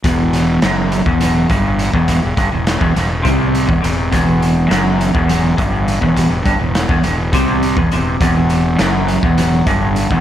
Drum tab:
HH |x-x-x-x-x-x-x-|x-x-x-x-x-x-x-|x-x-x-x-x-x-x-|x-x-x-x-x-x-x-|
SD |--o-o---------|----o-o-------|----o---------|----o---------|
BD |o------o--o--o|o-o--o--o--o--|o------o--o--o|o-o--o--o--o--|

HH |x-x-x-x-x-x-x-|
SD |----o---------|
BD |o------o--o--o|